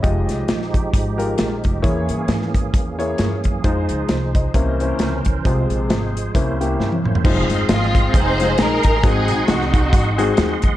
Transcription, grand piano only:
Already playing: C#5 E5
0.03 G#3 F4 G4 D#5
1.18 G#3 F4 G4 A#4
1.82 E3 A#3 E4 G#4 C#5
2.99 A#3 E4 G#4 C#5
3.64 G#3 D#4 F4 C5
4.10 G#4 C5
4.35 C5 D#5
4.54 C3 A#3 C#4 E4 C5
4.81 A#3 C#4 E4 C5
5.45 C3 G#3 C4 F4 C5
6.34 C3 A#3 C#4 E4 C5
6.60 A#3 C#4 E4 G4
7.24 G#3 C4 D#4 F4 C5
8.40 G#3 C4 D#4 F4 C5
9.03 G#2 G#3 C4 D#4 F#4 C5
10.18 G#3 C4 D#4 F#4 G#4

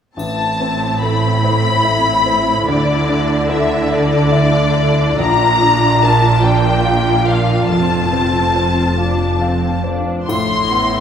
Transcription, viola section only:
0.17 C4 E4
2.68 D4
5.20 F4
7.69 C4
8.98 D4
9.42 C4
9.85 D4
10.29 E4

